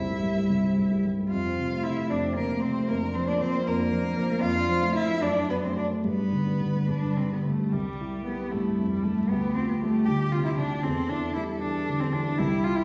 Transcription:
0.00 0.48 C2 soft
0.00 0.18 G2 soft
0.00 0.64 C4 soft
0.00 1.03 E4 medium
0.00 1.03 E5 medium
0.10 0.32 G3 soft
0.23 0.45 G2 soft
0.38 0.59 G3 soft
0.50 1.29 C2 soft
0.64 0.86 C4 soft
0.78 1.00 G2 soft
0.92 1.13 G3 soft
1.05 1.27 G2 soft
1.19 1.32 G3 soft
1.31 2.10 F2 soft
1.31 1.85 F4 medium
1.31 1.86 F5 medium
1.46 1.67 C4 soft
1.59 1.80 C3 soft
1.73 1.93 A3 soft
1.83 2.06 C3 soft
1.83 2.11 E4 medium
1.83 2.10 E5 medium
1.98 2.19 A3 soft
2.10 2.87 F2 soft
2.10 2.37 D4 medium
2.10 2.18 D5 medium
2.25 2.45 C4 soft
2.36 2.58 C3 soft
2.36 2.63 A#3 medium
2.36 2.62 A#4 medium
2.51 2.71 A3 soft
2.62 2.84 C3 soft
2.62 2.87 C4 medium
2.62 2.90 C5 medium
2.77 2.90 A3 soft
2.88 3.66 F2 medium
2.88 2.96 A#3 medium
2.88 3.17 A#4 medium
3.03 3.23 D4 soft
3.14 3.36 F3 medium
3.14 3.27 C4 medium
3.14 3.30 C5 medium
3.27 3.49 A#3 soft
3.27 3.39 D4 medium
3.27 3.43 D5 medium
3.40 3.62 F3 medium
3.40 3.65 C4 medium
3.40 3.69 C5 medium
3.54 3.74 A#3 soft
3.65 4.41 F2 medium
3.65 4.43 A#3 medium
3.65 4.43 A#4 medium
3.80 4.00 D4 medium
3.92 4.13 F3 medium
4.05 4.25 A#3 medium
4.17 4.38 F3 medium
4.31 4.43 A#3 medium
4.41 5.20 F2 medium
4.41 4.95 F4 medium
4.41 4.94 F5 medium
4.56 4.77 D4 soft
4.69 4.90 F3 medium
4.82 5.04 A3 soft
4.95 5.17 F3 soft
4.95 5.24 E4 medium
4.95 5.24 E5 medium
5.08 5.22 A3 soft
5.22 6.02 F#2 medium
5.22 5.52 D4 medium
5.22 5.49 D5 medium
5.36 5.58 D4 soft
5.49 5.71 F#3 soft
5.49 5.66 B3 medium
5.49 5.55 B4 medium
5.63 5.85 A3 soft
5.63 5.77 C4 medium
5.63 5.77 C5 medium
5.77 5.99 F#3 soft
5.77 5.86 D4 medium
5.77 5.86 D5 medium
5.90 6.05 A3 soft
6.05 6.87 G2 soft
6.05 6.88 B3 medium
6.05 7.42 B4 medium
6.19 6.41 D4 soft
6.32 6.55 D3 soft
6.47 6.69 G3 soft
6.61 6.83 D3 soft
6.75 6.97 G3 soft
6.88 7.70 G2 soft
6.88 7.18 D4 medium
7.03 7.25 D4 soft
7.17 7.39 D3 soft
7.17 7.31 C4 soft
7.32 7.54 G3 soft
7.32 7.38 B3 medium
7.45 7.68 D3 soft
7.45 7.75 A3 medium
7.60 7.73 G3 soft
7.73 9.27 C2 soft
7.73 8.25 G3 medium
7.73 8.54 G4 soft
8.01 8.42 E4 soft
8.26 8.69 G3 soft
8.26 8.53 B3 medium
8.51 8.94 G2 soft
8.51 8.91 A3 medium
8.51 9.30 E4 soft
8.79 9.05 F2 soft
8.91 9.04 G3 medium
9.03 9.31 G2 soft
9.03 9.31 A3 medium
9.30 10.81 D2 soft
9.30 9.55 B3 medium
9.30 10.06 G4 soft
9.55 9.68 C4 medium
9.55 9.98 F4 soft
9.68 9.74 B3 medium
9.82 10.23 G3 soft
9.82 10.07 A3 medium
10.06 10.49 D3 soft
10.06 10.33 G4 medium
10.06 10.86 G4 soft
10.32 10.59 C3 soft
10.32 10.44 F4 medium
10.44 10.50 E4 medium
10.57 10.85 D3 soft
10.57 10.85 D4 medium
10.83 12.35 E2 medium
10.83 11.10 C4 medium
10.83 12.38 A4 soft
11.09 11.34 D4 medium
11.09 11.52 E4 soft
11.34 11.78 G3 soft
11.34 11.42 E4 medium
11.60 12.03 E3 soft
11.60 12.02 D4 medium
11.89 12.14 D3 soft
12.00 12.14 C4 medium
12.13 12.39 E3 soft
12.13 12.39 D4 medium
12.38 12.84 C2 medium
12.38 12.66 E4 medium
12.38 12.84 G4 medium
12.64 12.84 E4 soft
12.64 12.77 F4 medium
12.76 12.84 E4 medium

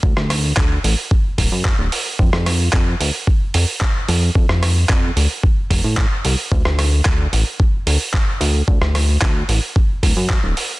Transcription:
0.03 0.14 D2 medium
0.03 kick loud
0.17 0.53 D2 medium
0.17 cross-stick medium
0.30 cross-stick medium
0.30 open hi-hat loud
0.57 0.79 D2 medium
0.57 kick loud
0.57 clap loud
0.84 0.95 A1 medium
0.84 open hi-hat medium
1.11 kick loud
1.38 1.49 D1 medium
1.38 kick medium
1.38 open hi-hat loud
1.52 1.73 F#2 medium
1.65 kick loud
1.65 clap loud
1.79 1.90 D1 medium
1.92 open hi-hat loud
2.19 2.30 F2 medium
2.19 kick loud
2.33 2.69 F2 loud
2.33 cross-stick medium
2.46 cross-stick medium
2.46 open hi-hat loud
2.73 2.95 F2 medium
2.73 kick loud
2.73 clap loud
3.00 3.11 D2 medium
3.00 open hi-hat medium
3.27 kick loud
3.54 3.65 F2 medium
3.54 open hi-hat loud
3.81 kick loud
3.81 clap loud
4.08 4.30 F2 loud
4.08 open hi-hat medium
4.35 4.46 F2 medium
4.35 kick loud
4.49 4.85 F2 loud
4.49 cross-stick medium
4.63 cross-stick medium
4.63 open hi-hat loud
4.89 5.11 F2 medium
4.89 kick loud
4.89 clap loud
5.16 5.27 D2 medium
5.16 open hi-hat medium
5.43 kick loud
5.70 5.81 F1 medium
5.70 kick medium
5.70 open hi-hat medium
5.84 6.06 A2 medium
5.97 kick loud
5.97 clap loud
6.25 6.36 C2 loud
6.25 open hi-hat medium
6.51 6.62 D2 medium
6.51 kick loud
6.65 7.01 D2 loud
6.65 cross-stick medium
6.79 cross-stick medium
6.79 open hi-hat loud
7.05 7.27 D2 medium
7.05 kick loud
7.05 clap loud
7.33 7.44 A1 medium
7.33 open hi-hat medium
7.60 kick loud
7.87 7.98 D2 medium
7.87 open hi-hat loud
8.14 kick loud
8.14 clap loud
8.41 8.62 D2 loud
8.41 open hi-hat medium
8.68 8.79 D2 medium
8.68 kick loud
8.81 9.17 D2 loud
8.81 cross-stick medium
8.95 cross-stick medium
8.95 open hi-hat loud
9.22 9.43 D2 loud
9.22 kick loud
9.22 clap loud
9.49 9.60 A1 medium
9.49 open hi-hat medium
9.76 kick loud
10.03 10.14 D1 medium
10.03 kick medium
10.03 open hi-hat medium
10.16 10.38 F#2 medium
10.30 kick loud
10.30 clap loud
10.43 10.54 D1 medium
10.57 open hi-hat medium

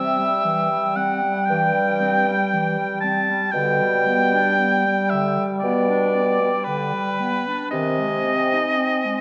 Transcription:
0.00 0.29 C3 medium
0.00 3.50 G3 medium
0.00 0.20 C4 soft
0.00 0.97 E5 loud
0.00 3.50 G5 medium
0.19 0.47 G3 soft
0.45 0.72 E3 medium
0.70 0.98 G3 soft
0.96 1.24 C4 medium
0.96 1.47 F#5 medium
1.22 1.49 G3 soft
1.46 3.00 G5 medium
1.50 2.35 G2 medium
1.50 1.75 E3 medium
1.73 2.02 G3 medium
2.01 2.29 C4 medium
2.27 2.55 G3 medium
2.54 2.80 E3 medium
2.78 3.05 G3 soft
3.00 3.31 C4 medium
3.00 3.53 A5 medium
3.30 3.55 G3 medium
3.52 4.41 B2 medium
3.52 3.83 D3 medium
3.52 7.41 G3 medium
3.52 5.12 G5 medium
3.52 7.42 G5 medium
3.81 4.08 G3 soft
4.07 4.35 B3 medium
4.34 4.61 D4 medium
4.59 4.87 B3 soft
4.86 5.15 G3 soft
5.10 5.40 D3 medium
5.10 5.44 E5 medium
5.39 5.62 G3 soft
5.59 5.91 B3 medium
5.59 6.66 D5 medium
5.63 6.50 B2 medium
5.89 6.16 D4 medium
6.15 6.42 B3 soft
6.40 6.69 G3 soft
6.64 6.95 D3 medium
6.64 7.70 B4 medium
6.93 7.22 G3 soft
7.20 7.49 B3 medium
7.47 7.73 D4 medium
7.71 8.60 C3 medium
7.71 8.01 D#3 medium
7.71 9.21 C4 medium
7.71 9.21 D#5 medium
7.71 9.21 G#5 medium
8.00 8.27 G#3 medium
8.26 8.55 C4 medium
8.53 8.79 D#4 soft
8.78 9.07 C4 soft
9.05 9.21 G#3 soft

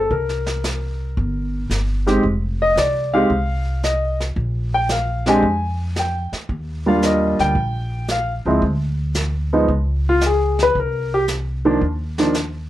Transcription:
0.00 0.11 A4 medium
0.11 1.13 C2 medium
0.11 1.67 A#4 medium
0.11 brush sweep soft
0.11 kick soft
0.29 snare soft
0.46 snare soft
0.64 snare medium
0.64 hi-hat pedal medium
1.17 1.67 G1 medium
1.17 brush sweep soft
1.17 kick soft
1.70 2.19 G1 medium
1.70 snare soft
1.70 hi-hat pedal soft
2.07 2.22 G#3 medium
2.07 2.22 C4 medium
2.07 2.22 D#4 medium
2.07 2.22 G4 medium
2.07 snare soft
2.23 2.73 F1 medium
2.23 brush sweep soft
2.23 kick soft
2.62 2.77 D#5 medium
2.76 3.26 C2 medium
2.76 3.13 D5 medium
2.76 snare medium
2.76 hi-hat pedal medium
3.14 3.28 G#3 medium
3.14 3.29 C4 medium
3.14 3.29 D#4 medium
3.14 3.29 G4 medium
3.14 3.79 F5 medium
3.30 4.32 C2 medium
3.30 brush sweep soft
3.30 kick soft
3.83 4.19 D#5 medium
3.83 snare soft
3.83 hi-hat pedal soft
4.20 snare soft
4.36 5.39 A#1 medium
4.36 brush sweep soft
4.36 kick soft
4.74 4.90 G5 medium
4.89 5.26 F5 medium
4.89 snare medium
4.89 hi-hat pedal medium
5.26 5.41 G#3 medium
5.26 5.42 C4 medium
5.26 5.42 D4 medium
5.26 5.42 G4 medium
5.26 5.94 G#5 medium
5.26 snare soft
5.42 6.28 F2 medium
5.42 brush sweep soft
5.42 kick soft
5.96 6.33 G5 medium
5.96 snare soft
5.96 hi-hat pedal soft
6.32 muted upright bass stroke soft
6.32 snare soft
6.49 7.35 D#2 medium
6.49 brush sweep soft
6.49 kick soft
6.86 7.53 G3 medium
6.86 7.53 A#3 medium
6.86 7.53 D4 medium
6.86 7.53 F4 medium
6.86 7.03 F5 medium
7.02 7.39 D#5 medium
7.02 snare medium
7.02 hi-hat pedal medium
7.39 7.54 D2 medium
7.39 8.06 G5 medium
7.39 snare soft
7.55 8.41 A#1 medium
7.55 brush sweep soft
7.55 kick soft
8.08 8.33 F5 medium
8.08 snare soft
8.08 hi-hat pedal soft
8.46 8.61 C#2 medium
8.46 8.61 F3 medium
8.46 8.61 G#3 medium
8.46 8.61 C4 medium
8.46 8.61 E4 medium
8.62 9.64 D2 medium
8.62 brush sweep soft
8.62 kick soft
9.15 snare medium
9.15 hi-hat pedal soft
9.53 9.67 F3 medium
9.53 9.68 G#3 medium
9.53 9.68 B3 medium
9.53 9.68 D#4 medium
9.68 10.71 C#2 medium
9.68 brush sweep soft
9.68 kick soft
10.09 10.23 F4 medium
10.21 snare medium
10.21 hi-hat pedal medium
10.26 10.60 G#4 medium
10.59 10.77 B4 loud
10.59 snare soft
10.75 11.78 C2 medium
10.75 brush sweep soft
10.75 kick soft
10.80 11.13 A#4 medium
11.14 11.23 G4 medium
11.28 snare medium
11.28 hi-hat pedal medium
11.65 11.80 D#3 medium
11.65 11.80 F3 medium
11.65 11.80 A#3 medium
11.65 11.80 D4 medium
11.81 12.67 D#2 medium
11.81 brush sweep soft
11.81 kick soft
12.18 12.33 D#3 medium
12.18 12.33 F3 medium
12.18 12.34 A#3 medium
12.18 12.34 D4 medium
12.18 snare medium
12.34 snare soft
12.34 hi-hat pedal soft

